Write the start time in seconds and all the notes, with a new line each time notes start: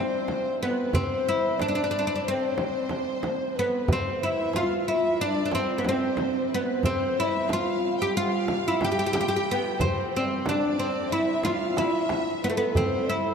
Already playing: C4 C5
0.28 darbuka tek, frame drum
0.53 C5
0.60 B3 B4
0.92 C4 C5, frame drum, darbuka dum
1.28 E4
1.57 D5, darbuka tek, frame drum
1.62 D4
1.68 D4
1.75 D4
1.84 D4
1.91 D4, darbuka ka
1.99 D4
2.07 D4, darbuka ka
2.16 D4
2.22 C5, darbuka ka
2.28 C4
2.58 darbuka tek, frame drum
2.89 darbuka tek, frame drum
3.23 C5, darbuka tek, frame drum
3.55 B4
3.59 B3
3.87 C5, frame drum, darbuka dum
3.93 C4 B4
4.03 C5
4.16 F5
4.20 E4 E5
4.53 F4 F5, darbuka tek, frame drum
4.80 F5
4.86 E4 E5
5.19 D4 D5, darbuka ka
5.46 D4
5.51 C4 C5, darbuka tek, frame drum
5.78 B3
5.84 C5, darbuka tek, frame drum
5.89 C4
6.17 darbuka tek, frame drum
6.49 B4
6.54 B3
6.82 C4 C5, frame drum, darbuka dum
7.16 E5
7.20 E4
7.49 F4 F5, darbuka tek, frame drum
7.98 G4 G5
8.15 F4 F5, darbuka ka
8.48 darbuka tek, frame drum
8.66 E4 E5
8.81 G4 G5, darbuka tek, frame drum
8.92 G4
8.99 G4
9.06 G4
9.13 G4, darbuka tek, frame drum
9.21 G4
9.28 G4
9.36 G4
9.51 B3
9.79 C4 C5, darbuka dum, frame drum
10.12 C5
10.16 C4 D5
10.26 C5
10.45 D4 D5, darbuka tek, frame drum
10.79 C4 C5
11.10 E4 E5, darbuka ka
11.43 F4 F5, frame drum
11.76 E4 E5 F5, darbuka tek, frame drum
11.84 D5
11.89 E5
12.09 darbuka tek, frame drum
12.42 B3 B4
12.50 A3
12.57 B3 B4
12.75 C4 C5, darbuka dum, frame drum
13.09 E4 E5